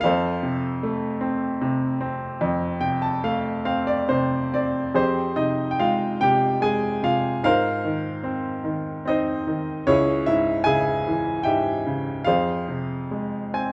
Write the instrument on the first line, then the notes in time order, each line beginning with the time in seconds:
upright piano
0.01 F2 F5
0.05 A4 C5
0.43 C3
0.83 A3
1.21 C4
1.61 C3
2.00 C4
2.41 F2
2.81 C3 G5
3.02 A5
3.24 A3 F5
3.65 C4 F5
3.87 D5
4.09 C3 C5
4.54 C4 D5
4.94 F2 C4 G4 G#4 C5
5.36 C3 D#4 D#5
5.71 G5
5.79 G#3 F4 F5
6.21 C3 G4 G5
6.61 G#3 G#4 G#5
7.03 C3 F4 F5
7.43 G#2 F4 A#4 C5 F5
7.84 D#3
8.24 C4
8.64 D#3
9.05 C4 D#4 C5 D#5
9.47 D#3
9.87 C#2 C#4 E4 G#4 C#5
10.26 G#2 E4 E5
10.64 C#3 G#4 E5 G#5
11.08 E3
11.43 G#2 G4 E5 G5
11.86 C#3
12.24 F2 F4 G#4 C5 F5
12.68 C3
13.11 G#3
13.54 C4 G#5